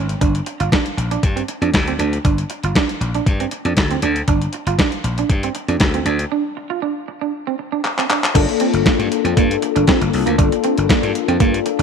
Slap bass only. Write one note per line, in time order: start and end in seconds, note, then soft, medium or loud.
0.00 0.14 G#1 medium
0.21 0.40 G1 loud
0.60 0.69 G1 medium
0.97 1.16 A#1 medium
1.23 1.41 G2 loud
1.61 1.70 F2 medium
1.74 1.92 D2 medium
1.99 2.17 D2 medium
2.25 2.43 G1 loud
2.63 2.72 G1 medium
3.01 3.19 A#1 medium
3.26 3.45 G2 loud
3.65 3.74 F2 medium
3.77 3.95 D2 medium
4.02 4.21 D2 medium
4.28 4.46 G1 medium
4.66 4.75 G1 medium
5.04 5.22 A#1 medium
5.29 5.48 G2 medium
5.68 5.77 F2 medium
5.80 5.99 D2 medium
6.05 6.24 D2 medium
8.35 8.45 G1 loud
8.74 8.82 G1 medium
8.99 9.08 G2 loud
9.24 9.33 F2 medium
9.37 9.55 G2 loud
9.76 9.84 G1 loud
10.01 10.10 G1 medium
10.13 10.23 C2 medium
10.27 10.35 D2 medium
10.39 10.48 G1 loud
10.78 10.86 G1 medium
11.03 11.11 G2 loud
11.28 11.37 F2 loud
11.40 11.58 G2 loud
11.79 11.83 G1 medium